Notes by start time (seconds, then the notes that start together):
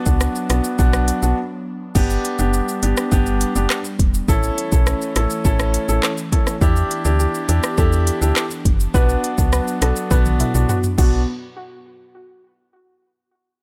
Already playing: F#3 B3 D4
0.06 C#2 B3 D4 F#4, kick, shaker
0.21 cross-stick, shaker
0.36 shaker
0.49 B1 B3 D4 F#4, cross-stick, closed hi-hat, shaker
0.64 shaker
0.79 B1 B3 D4 F#4, kick, shaker
0.93 cross-stick, shaker
1.08 closed hi-hat, shaker
1.22 B1 B3 D4 F#4, shaker
1.95 G1 G3 B3 D4 G4, kick, crash, shaker
2.10 shaker
2.25 closed hi-hat, shaker
2.39 F#1 B3 D4 G4, shaker
2.54 shaker
2.68 shaker
2.82 G1 B3 D4 G4, closed hi-hat, shaker
2.97 cross-stick, shaker
3.12 G1 B3 D4 G4, kick, shaker
3.26 shaker
3.41 closed hi-hat, shaker
3.55 F#1 B3 D4 G4, shaker
3.70 cross-stick, clap, shaker
3.84 shaker
3.99 E1, kick, closed hi-hat, shaker
4.14 shaker
4.28 A1 E3 A3 C#4 E4 A4, kick, shaker
4.43 shaker
4.58 closed hi-hat, shaker
4.72 B1 C#4 E4 A4, kick, shaker
4.87 cross-stick, shaker
5.01 shaker
5.16 A1 C#4 E4 A4, cross-stick, closed hi-hat, high timbale, shaker
5.30 shaker
5.45 A1 C#4 E4 A4, kick, shaker
5.59 cross-stick, shaker
5.74 closed hi-hat, shaker
5.88 A1 C#4 E4 A4, shaker
6.03 cross-stick, clap, shaker
6.17 shaker
6.32 C#4 E4 A4, kick, closed hi-hat, high timbale, shaker
6.47 cross-stick, high timbale, shaker
6.61 E2 B3 D4 E4 G4, kick, shaker
6.76 shaker
6.91 closed hi-hat, shaker
7.05 D2 D4 E4 G4, shaker
7.20 G4, shaker
7.35 shaker
7.48 E2 D4 E4 G4, closed hi-hat, shaker
7.63 cross-stick, shaker
7.78 E2 D4 E4 G4 A4, kick, shaker
7.92 shaker
8.07 closed hi-hat, shaker
8.21 D2 D4 E4 G4, shaker
8.36 cross-stick, clap, shaker
8.51 shaker
8.65 F#1, kick, closed hi-hat, shaker
8.80 shaker
8.94 B1 F#3 B3 D4 F#4 B4, kick, shaker
9.09 shaker
9.24 closed hi-hat, shaker
9.38 C#2 B3 D4 F#4, kick, shaker
9.53 B4, cross-stick, shaker
9.68 shaker
9.81 B1 B3 D4 F#4 A4, cross-stick, closed hi-hat, shaker
9.96 shaker
10.11 B1 B3 D4 F#4 B4, kick, high tom, shaker
10.25 high tom, shaker
10.40 E4, closed hi-hat, mid tom, shaker
10.54 B1 B3 D4 F#4, mid tom, shaker
10.69 F#4, mid tom, shaker
10.83 mid tom, shaker
10.98 B1 B3 D4 F#4, kick, crash, shaker